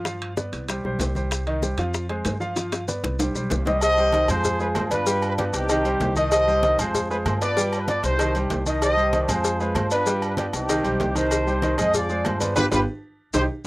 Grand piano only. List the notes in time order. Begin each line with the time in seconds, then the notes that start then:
0.06 F3 F4 F5
0.37 B3 B4 D5
0.69 G3 G4 C5
0.85 G3 G4 C5
1.15 G3 G4 C5
1.47 D#3 D#4 D#5
1.62 G3 G4 C5
1.78 F3 F4 F5
2.09 G#3 G#4 C5
2.40 F3 F4 F5
2.56 F3 F4 F5
2.88 B3 B4 D5
3.19 G3 G4 C5
3.35 G3 G4 C5
3.67 G3 G4 C5
3.98 G3 G4 C5
4.13 D#3 D#4 D#5
4.28 G#3 G#4 C5
4.60 G#3 G#4 C5
4.91 B3 B4 D5
5.07 G3 G4 G5
5.38 B3 B4 D5
5.70 D#3 D#4 D#5
5.85 G3 G4 C5
6.17 D#3 D#4 D#5
6.48 G3 G4 C5
6.63 D#3 D#4 D#5
6.79 G#3 G#4 C5
7.10 G#3 G#4 C5
7.42 B3 B4 D5
7.57 G3 G4 G5
7.88 B3 B4 D5
8.20 D#3 D#4 D#5
8.36 G3 G4 C5
8.66 D#3 D#4 D#5
8.97 G3 G4 C5
9.14 D#3 D#4 D#5
9.29 G#3 G#4 C5
9.60 G#3 G#4 C5
9.91 B3 B4 D5
10.06 G3 G4 G5
10.38 B3 B4 D5
10.69 D#3 D#4 D#5
10.84 G3 G4 C5
11.15 D#3 D#4 D#5
11.47 G3 G4 C5
11.63 D#3 D#4 D#5
11.78 G#3 G#4 C5
12.09 G#3 G#4 C5
12.40 B3 B4 D5
12.56 F4 G4 B4
12.71 F4 G4 B4
13.34 D#4 G4 C5